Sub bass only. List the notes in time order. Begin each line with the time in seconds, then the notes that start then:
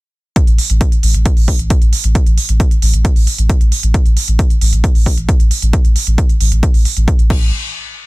0.47 A1
0.70 A1
1.03 A1
1.15 A1
1.37 A1
1.59 A1
1.82 A1
2.04 A1
2.27 A1
2.49 A1
2.82 A1
2.94 A1
3.16 A1
3.38 A1
3.61 A1
3.83 A1
4.06 A1
4.28 A1
4.61 A1
4.73 A1
4.95 A1
5.18 A1
5.40 A1
5.62 A1
5.85 A1
6.07 A1
6.41 A1
6.52 A1
6.74 A1
6.97 A1
7.19 A1
7.30 A1